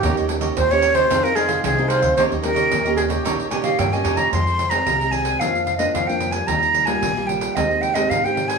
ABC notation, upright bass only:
X:1
M:4/4
L:1/16
Q:1/4=112
K:Ebmix
V:1 name="Upright bass" clef=bass
E,, E,,3 E,,4 F,,4 C,,3 =D,, | E,, E,,3 E,,4 B,,,2 B,,2 G,,2 F,,2 | [K:Fm] F,,4 C,,4 F,,4 F,,4 | E,,4 B,,,4 E,,4 A,,4 |]